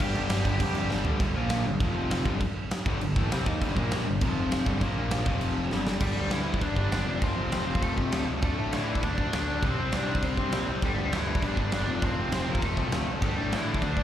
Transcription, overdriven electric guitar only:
0, 0, Header, 1, 2, 480
1, 0, Start_track
1, 0, Tempo, 300451
1, 16, Time_signature, 4, 2, 24, 8
1, 22417, End_track
2, 0, Start_track
2, 0, Title_t, "Overdriven electric guitar"
2, 0, Program_c, 0, 29
2, 17, Note_on_c, 0, 67, 71
2, 28, Note_on_c, 0, 79, 76
2, 1391, Note_off_c, 0, 67, 0
2, 1394, Note_off_c, 0, 79, 0
2, 9610, Note_on_c, 0, 55, 88
2, 9622, Note_on_c, 0, 67, 64
2, 10069, Note_off_c, 0, 67, 0
2, 10083, Note_off_c, 0, 55, 0
2, 10090, Note_on_c, 0, 64, 102
2, 10110, Note_on_c, 0, 52, 83
2, 10554, Note_off_c, 0, 52, 0
2, 10561, Note_off_c, 0, 64, 0
2, 10567, Note_on_c, 0, 62, 107
2, 10582, Note_on_c, 0, 74, 82
2, 11030, Note_off_c, 0, 74, 0
2, 11045, Note_off_c, 0, 62, 0
2, 11060, Note_on_c, 0, 62, 104
2, 11075, Note_on_c, 0, 74, 79
2, 11515, Note_off_c, 0, 74, 0
2, 11532, Note_on_c, 0, 60, 100
2, 11552, Note_on_c, 0, 72, 75
2, 11560, Note_off_c, 0, 62, 0
2, 11997, Note_off_c, 0, 72, 0
2, 12003, Note_off_c, 0, 60, 0
2, 12022, Note_on_c, 0, 60, 101
2, 12029, Note_on_c, 0, 72, 76
2, 12475, Note_off_c, 0, 72, 0
2, 12484, Note_off_c, 0, 60, 0
2, 12490, Note_on_c, 0, 57, 93
2, 12506, Note_on_c, 0, 69, 76
2, 13169, Note_off_c, 0, 57, 0
2, 13178, Note_off_c, 0, 69, 0
2, 13474, Note_on_c, 0, 57, 87
2, 13485, Note_on_c, 0, 69, 68
2, 13918, Note_off_c, 0, 57, 0
2, 13924, Note_off_c, 0, 69, 0
2, 13964, Note_on_c, 0, 64, 99
2, 13977, Note_on_c, 0, 52, 79
2, 14404, Note_off_c, 0, 64, 0
2, 14410, Note_off_c, 0, 52, 0
2, 14437, Note_on_c, 0, 62, 93
2, 14441, Note_on_c, 0, 74, 75
2, 14880, Note_off_c, 0, 74, 0
2, 14906, Note_off_c, 0, 62, 0
2, 14923, Note_on_c, 0, 62, 100
2, 14932, Note_on_c, 0, 74, 67
2, 15365, Note_off_c, 0, 74, 0
2, 15382, Note_on_c, 0, 60, 99
2, 15389, Note_on_c, 0, 72, 74
2, 15411, Note_off_c, 0, 62, 0
2, 15835, Note_off_c, 0, 72, 0
2, 15879, Note_off_c, 0, 60, 0
2, 15892, Note_on_c, 0, 62, 110
2, 15904, Note_on_c, 0, 74, 67
2, 16331, Note_off_c, 0, 74, 0
2, 16345, Note_on_c, 0, 60, 93
2, 16359, Note_on_c, 0, 72, 76
2, 16374, Note_off_c, 0, 62, 0
2, 17014, Note_off_c, 0, 60, 0
2, 17022, Note_off_c, 0, 72, 0
2, 17332, Note_on_c, 0, 55, 81
2, 17344, Note_on_c, 0, 67, 66
2, 17538, Note_off_c, 0, 67, 0
2, 17547, Note_off_c, 0, 55, 0
2, 17557, Note_on_c, 0, 67, 67
2, 17566, Note_on_c, 0, 55, 84
2, 17774, Note_off_c, 0, 67, 0
2, 17802, Note_off_c, 0, 55, 0
2, 17816, Note_on_c, 0, 52, 75
2, 17824, Note_on_c, 0, 64, 100
2, 18247, Note_off_c, 0, 52, 0
2, 18297, Note_off_c, 0, 64, 0
2, 18305, Note_on_c, 0, 62, 105
2, 18316, Note_on_c, 0, 74, 66
2, 18511, Note_off_c, 0, 74, 0
2, 18516, Note_off_c, 0, 62, 0
2, 18533, Note_on_c, 0, 62, 94
2, 18540, Note_on_c, 0, 74, 61
2, 18718, Note_off_c, 0, 74, 0
2, 18725, Note_off_c, 0, 62, 0
2, 18737, Note_on_c, 0, 74, 76
2, 18745, Note_on_c, 0, 62, 97
2, 19185, Note_off_c, 0, 74, 0
2, 19237, Note_off_c, 0, 62, 0
2, 19245, Note_on_c, 0, 60, 93
2, 19249, Note_on_c, 0, 72, 58
2, 19678, Note_off_c, 0, 72, 0
2, 19681, Note_off_c, 0, 60, 0
2, 19738, Note_on_c, 0, 72, 77
2, 19750, Note_on_c, 0, 60, 93
2, 19943, Note_off_c, 0, 72, 0
2, 19963, Note_on_c, 0, 70, 64
2, 19971, Note_off_c, 0, 60, 0
2, 19990, Note_on_c, 0, 58, 85
2, 20175, Note_off_c, 0, 70, 0
2, 20199, Note_on_c, 0, 69, 67
2, 20209, Note_off_c, 0, 58, 0
2, 20209, Note_on_c, 0, 57, 85
2, 20858, Note_off_c, 0, 69, 0
2, 20912, Note_off_c, 0, 57, 0
2, 21145, Note_on_c, 0, 67, 62
2, 21171, Note_on_c, 0, 55, 83
2, 21586, Note_off_c, 0, 67, 0
2, 21645, Note_on_c, 0, 52, 76
2, 21647, Note_off_c, 0, 55, 0
2, 21657, Note_on_c, 0, 64, 99
2, 22077, Note_off_c, 0, 52, 0
2, 22082, Note_on_c, 0, 74, 77
2, 22083, Note_off_c, 0, 64, 0
2, 22110, Note_on_c, 0, 62, 96
2, 22417, Note_off_c, 0, 62, 0
2, 22417, Note_off_c, 0, 74, 0
2, 22417, End_track
0, 0, End_of_file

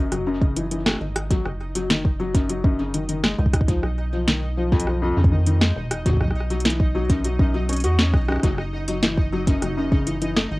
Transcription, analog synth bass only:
0, 0, Header, 1, 2, 480
1, 0, Start_track
1, 0, Tempo, 594059
1, 1055, Time_signature, 4, 2, 24, 8
1, 8561, End_track
2, 0, Start_track
2, 0, Title_t, "Analog synth bass"
2, 0, Program_c, 0, 38
2, 95, Note_on_c, 0, 30, 90
2, 781, Note_off_c, 0, 30, 0
2, 815, Note_on_c, 0, 32, 77
2, 1141, Note_off_c, 0, 32, 0
2, 1175, Note_on_c, 0, 30, 82
2, 2701, Note_off_c, 0, 30, 0
2, 2735, Note_on_c, 0, 37, 101
2, 3061, Note_off_c, 0, 37, 0
2, 3095, Note_on_c, 0, 35, 78
2, 4141, Note_off_c, 0, 35, 0
2, 4175, Note_on_c, 0, 41, 86
2, 4621, Note_off_c, 0, 41, 0
2, 4655, Note_on_c, 0, 28, 91
2, 4981, Note_off_c, 0, 28, 0
2, 5015, Note_on_c, 0, 35, 81
2, 6335, Note_on_c, 0, 40, 87
2, 6347, Note_off_c, 0, 35, 0
2, 6575, Note_on_c, 0, 35, 93
2, 6587, Note_off_c, 0, 40, 0
2, 6772, Note_off_c, 0, 35, 0
2, 6815, Note_on_c, 0, 30, 102
2, 7741, Note_off_c, 0, 30, 0
2, 7775, Note_on_c, 0, 30, 91
2, 8461, Note_off_c, 0, 30, 0
2, 8495, Note_on_c, 0, 32, 83
2, 8561, Note_off_c, 0, 32, 0
2, 8561, End_track
0, 0, End_of_file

